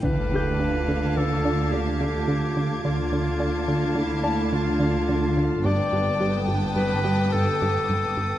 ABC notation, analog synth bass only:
X:1
M:5/4
L:1/8
Q:1/4=107
K:Ddor
V:1 name="Analog synth bass" clef=bass
D, D, D D, D, D D, D, D, D, | D, D, D D, D, D D, D, D, D, | G,, G,, G, G,, G,, G, G,, G,, G,, G,, |]